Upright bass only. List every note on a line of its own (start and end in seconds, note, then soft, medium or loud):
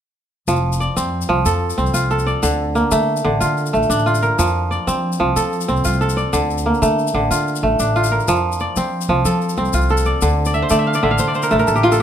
0.48 0.86 F1 medium
0.97 1.22 F2 medium
1.29 1.42 C2 medium
1.46 1.71 F2 medium
1.78 1.91 C2 medium
1.94 2.33 C2 medium
2.43 2.82 D2 medium
2.92 3.17 D3 medium
3.25 3.37 A1 medium
3.41 3.67 D3 medium
3.74 3.86 A1 medium
3.90 4.28 A1 medium
4.39 4.77 F2 medium
4.87 5.13 F3 medium
5.20 5.33 C2 medium
5.36 5.62 F3 medium
5.69 5.82 C2 medium
5.85 6.23 C2 medium
6.33 6.72 D2 medium
6.82 7.08 D3 medium
7.14 7.27 A1 medium
7.31 7.56 D3 medium
7.63 7.76 A1 medium
7.79 8.18 A1 medium
8.28 8.66 F2 medium
8.77 9.02 F3 medium
9.09 9.22 C2 medium
9.25 9.51 F3 medium
9.58 9.70 C2 medium
9.74 10.12 C2 medium
10.22 10.61 D2 medium
10.71 10.97 D3 medium
11.03 11.16 A1 medium
11.19 11.45 D3 medium
11.52 11.65 A1 medium
11.68 12.02 A1 medium